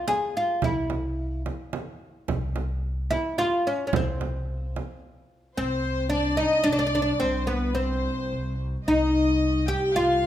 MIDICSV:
0, 0, Header, 1, 6, 480
1, 0, Start_track
1, 0, Tempo, 549451
1, 545, Time_signature, 3, 2, 24, 8
1, 8967, End_track
2, 0, Start_track
2, 0, Title_t, "Violin section"
2, 0, Program_c, 0, 48
2, 4873, Note_on_c, 0, 72, 80
2, 5316, Note_off_c, 0, 72, 0
2, 5353, Note_on_c, 0, 74, 87
2, 5580, Note_on_c, 0, 75, 81
2, 5589, Note_off_c, 0, 74, 0
2, 5821, Note_on_c, 0, 74, 92
2, 5823, Note_off_c, 0, 75, 0
2, 6297, Note_on_c, 0, 72, 76
2, 6303, Note_off_c, 0, 74, 0
2, 6536, Note_on_c, 0, 71, 69
2, 6541, Note_off_c, 0, 72, 0
2, 6780, Note_off_c, 0, 71, 0
2, 6786, Note_on_c, 0, 72, 73
2, 7505, Note_off_c, 0, 72, 0
2, 7743, Note_on_c, 0, 75, 84
2, 8428, Note_off_c, 0, 75, 0
2, 8445, Note_on_c, 0, 79, 82
2, 8689, Note_on_c, 0, 77, 88
2, 8694, Note_off_c, 0, 79, 0
2, 8967, Note_off_c, 0, 77, 0
2, 8967, End_track
3, 0, Start_track
3, 0, Title_t, "Oud"
3, 0, Program_c, 1, 24
3, 67, Note_on_c, 1, 68, 103
3, 313, Note_off_c, 1, 68, 0
3, 321, Note_on_c, 1, 65, 75
3, 557, Note_off_c, 1, 65, 0
3, 561, Note_on_c, 1, 64, 70
3, 1238, Note_off_c, 1, 64, 0
3, 2713, Note_on_c, 1, 64, 85
3, 2953, Note_off_c, 1, 64, 0
3, 2957, Note_on_c, 1, 65, 99
3, 3199, Note_off_c, 1, 65, 0
3, 3205, Note_on_c, 1, 61, 76
3, 3371, Note_off_c, 1, 61, 0
3, 3382, Note_on_c, 1, 61, 61
3, 3434, Note_off_c, 1, 61, 0
3, 3461, Note_on_c, 1, 60, 77
3, 4368, Note_off_c, 1, 60, 0
3, 4870, Note_on_c, 1, 60, 91
3, 5325, Note_on_c, 1, 62, 91
3, 5362, Note_off_c, 1, 60, 0
3, 5562, Note_off_c, 1, 62, 0
3, 5566, Note_on_c, 1, 63, 86
3, 5794, Note_off_c, 1, 63, 0
3, 5797, Note_on_c, 1, 62, 97
3, 5864, Note_off_c, 1, 62, 0
3, 5875, Note_on_c, 1, 62, 76
3, 5920, Note_off_c, 1, 62, 0
3, 5930, Note_on_c, 1, 62, 81
3, 5988, Note_off_c, 1, 62, 0
3, 5998, Note_on_c, 1, 62, 69
3, 6061, Note_off_c, 1, 62, 0
3, 6071, Note_on_c, 1, 62, 72
3, 6123, Note_off_c, 1, 62, 0
3, 6133, Note_on_c, 1, 62, 65
3, 6210, Note_off_c, 1, 62, 0
3, 6287, Note_on_c, 1, 60, 88
3, 6526, Note_on_c, 1, 59, 78
3, 6544, Note_off_c, 1, 60, 0
3, 6764, Note_off_c, 1, 59, 0
3, 6767, Note_on_c, 1, 60, 80
3, 7460, Note_off_c, 1, 60, 0
3, 7756, Note_on_c, 1, 63, 88
3, 8454, Note_off_c, 1, 63, 0
3, 8457, Note_on_c, 1, 67, 89
3, 8697, Note_off_c, 1, 67, 0
3, 8700, Note_on_c, 1, 65, 96
3, 8967, Note_off_c, 1, 65, 0
3, 8967, End_track
4, 0, Start_track
4, 0, Title_t, "Double bass"
4, 0, Program_c, 2, 43
4, 4870, Note_on_c, 2, 36, 71
4, 7720, Note_off_c, 2, 36, 0
4, 7725, Note_on_c, 2, 36, 77
4, 8967, Note_off_c, 2, 36, 0
4, 8967, End_track
5, 0, Start_track
5, 0, Title_t, "Upright bass"
5, 0, Program_c, 3, 32
5, 546, Note_on_c, 3, 36, 99
5, 1278, Note_off_c, 3, 36, 0
5, 1992, Note_on_c, 3, 36, 98
5, 2721, Note_off_c, 3, 36, 0
5, 3431, Note_on_c, 3, 36, 96
5, 4161, Note_off_c, 3, 36, 0
5, 4875, Note_on_c, 3, 36, 90
5, 5603, Note_off_c, 3, 36, 0
5, 5828, Note_on_c, 3, 36, 91
5, 6192, Note_off_c, 3, 36, 0
5, 6308, Note_on_c, 3, 36, 93
5, 7038, Note_off_c, 3, 36, 0
5, 7274, Note_on_c, 3, 36, 88
5, 7636, Note_off_c, 3, 36, 0
5, 7753, Note_on_c, 3, 36, 96
5, 8480, Note_off_c, 3, 36, 0
5, 8708, Note_on_c, 3, 36, 83
5, 8967, Note_off_c, 3, 36, 0
5, 8967, End_track
6, 0, Start_track
6, 0, Title_t, "Frame drum"
6, 66, Note_on_c, 9, 64, 67
6, 153, Note_off_c, 9, 64, 0
6, 542, Note_on_c, 9, 64, 85
6, 629, Note_off_c, 9, 64, 0
6, 785, Note_on_c, 9, 64, 63
6, 872, Note_off_c, 9, 64, 0
6, 1275, Note_on_c, 9, 64, 63
6, 1363, Note_off_c, 9, 64, 0
6, 1512, Note_on_c, 9, 64, 67
6, 1599, Note_off_c, 9, 64, 0
6, 1994, Note_on_c, 9, 64, 79
6, 2082, Note_off_c, 9, 64, 0
6, 2234, Note_on_c, 9, 64, 64
6, 2321, Note_off_c, 9, 64, 0
6, 2712, Note_on_c, 9, 64, 63
6, 2800, Note_off_c, 9, 64, 0
6, 2953, Note_on_c, 9, 64, 60
6, 3041, Note_off_c, 9, 64, 0
6, 3433, Note_on_c, 9, 64, 100
6, 3520, Note_off_c, 9, 64, 0
6, 3677, Note_on_c, 9, 64, 59
6, 3765, Note_off_c, 9, 64, 0
6, 4162, Note_on_c, 9, 64, 60
6, 4249, Note_off_c, 9, 64, 0
6, 8967, End_track
0, 0, End_of_file